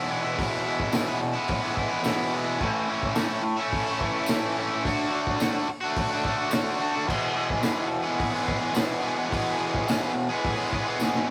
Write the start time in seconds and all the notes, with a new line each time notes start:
Already playing: E2 B2 E4
0.07 E3 G#3 B3
0.12 E4
0.23 G#3 B3 E4
0.27 E3
0.37 E2 B2 E3 G#3 B3, kick, open hi-hat
0.41 E4
0.64 E3 G#3 B3 E4
0.80 kick
0.92 E2 B2 E3 G#3 B3, snare, open hi-hat, tambourine
0.96 E4
1.05 G#3 B3 E4
1.10 E3
1.20 muted overdriven electric guitar stroke
1.33 G#3 B3 E4
1.38 E3
1.48 kick, open hi-hat
1.60 G#3 B3 E4
1.65 E3
1.75 E3 G#3 B3, kick
1.79 E4
1.89 G#3 B3 E4
1.94 E3
2.02 E2 B2 E3 G#3, snare, open hi-hat, tambourine
2.06 B3 E4
2.31 E3 G#3 B3
2.35 E4
2.45 G#3 B3 E4
2.49 E3
2.59 A2 E3 A3 C#4, kick, crash
2.64 E4
2.87 E3 A3 C#4
2.91 E4
3.03 kick
3.14 A2 E3 A3 C#4, snare, open hi-hat, tambourine
3.19 E4
3.28 C#4 E4
3.33 A3
3.43 muted overdriven electric guitar stroke
3.57 C#4 E4
3.61 A3
3.73 kick, open hi-hat
3.86 A3 C#4 E4
4.00 E3 A3 C#4, kick
4.05 E4
4.15 C#4 E4
4.19 A3
4.26 A2, snare, open hi-hat, tambourine
4.31 E3 A3 C#4 E4
4.55 E3 A3 C#4
4.60 E4
4.70 C#4 E4
4.74 A3
4.83 D3 A3 D4, kick, open hi-hat
4.88 F#4
5.10 D3 A3 D4
5.15 F#4
5.27 kick
5.37 D3 A3 D4, tambourine
5.41 F#4, snare, open hi-hat
5.50 D4 F#4
5.56 A3
5.68 muted overdriven electric guitar stroke
5.81 D4 F#4
5.86 A3
5.96 kick, open hi-hat
6.11 D4 F#4
6.15 A3
6.23 D3 A3 D4, kick
6.28 F#4
6.37 D4 F#4
6.42 A3
6.50 D3 A3 D4, snare, open hi-hat, tambourine
6.54 F#4
6.76 D3 A3
6.81 D4 F#4
6.92 D4 F#4
6.96 A3
7.05 E2 B2 E3 G#3, kick
7.10 B3 G#4, crash
7.33 E3 G#3 B3
7.38 G#4
7.50 kick
7.60 E2 B2 E3 G#3, snare, open hi-hat, tambourine
7.64 B3 G#4
7.75 G#3 B3 G#4
7.80 E3
7.89 muted overdriven electric guitar stroke
8.03 E3 G#3 B3 G#4
8.20 kick, open hi-hat
8.30 G#3 B3 G#4
8.35 E3
8.42 E3 G#3 B3
8.47 G#4, kick
8.58 G#3 B3 G#4
8.64 E3
8.72 E2 B2 E3 G#3 B3, open hi-hat, tambourine
8.77 G#4, snare
9.01 E3 G#3 B3
9.05 G#4
9.15 G#3 B3 G#4
9.19 E3
9.30 E2 B2 E3 G#3 B3, kick, open hi-hat
9.34 G#4
9.56 E3 G#3 B3
9.60 G#4
9.75 kick
9.85 E2 B2 E3 G#3, tambourine
9.89 B3 G#4, snare, open hi-hat
10.01 G#3 B3 G#4
10.06 E3
10.14 muted overdriven electric guitar stroke
10.29 G#3 B3 G#4
10.33 E3
10.45 kick, open hi-hat
10.56 G#3 B3 G#4
10.60 E3
10.70 E3 G#3 B3, kick
10.74 G#4
10.84 G#3 B3 G#4
10.89 E3
10.99 E2 B2 E3 G#3, snare, tambourine
11.03 B3 G#4
11.15 snare
11.26 E3